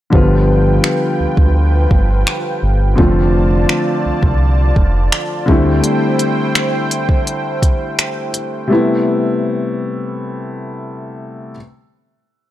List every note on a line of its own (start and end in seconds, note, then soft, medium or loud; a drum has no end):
0.10 0.80 G1 loud
0.10 2.93 D3 medium
0.10 2.94 F3 medium
0.10 2.94 G3 medium
0.10 2.95 B3 medium
0.10 2.95 F4 medium
0.10 2.95 B4 medium
0.10 2.95 G5 medium
0.10 kick loud
0.15 2.96 F4 medium
0.84 finger snap loud
1.20 1.27 D2 soft
1.37 1.87 D2 medium
1.37 kick medium
1.91 2.24 G1 medium
1.91 kick medium
2.27 finger snap loud
2.63 2.95 G1 loud
2.95 3.66 F1 loud
2.95 5.43 D3 medium
2.95 5.43 F3 medium
2.95 5.44 A3 medium
2.95 5.45 C4 medium
2.95 5.45 F4 medium
2.95 5.46 D5 medium
2.95 5.45 A5 medium
2.95 kick loud
3.00 5.45 F4 medium
3.69 finger snap loud
4.05 4.13 C2 soft
4.23 4.73 C2 medium
4.23 kick medium
4.76 5.09 F1 medium
4.76 kick medium
5.12 finger snap loud
5.46 5.81 D2 medium
5.46 8.29 D3 medium
5.46 8.29 G3 medium
5.46 8.30 A3 medium
5.46 8.31 C4 medium
5.46 8.66 E4 medium
5.46 8.66 C5 medium
5.46 8.66 G5 medium
5.46 kick loud
5.51 8.31 E4 medium
5.84 closed hi-hat medium
6.19 closed hi-hat medium
6.55 finger snap loud
6.55 closed hi-hat medium
6.91 closed hi-hat medium
7.09 kick medium
7.27 closed hi-hat medium
7.62 kick medium
7.62 closed hi-hat medium
7.99 finger snap loud
7.99 closed hi-hat medium
8.34 closed hi-hat medium
8.67 11.50 C3 medium
8.67 11.51 G3 medium
8.67 11.52 A3 medium
8.67 11.52 B3 medium
8.72 11.53 E4 medium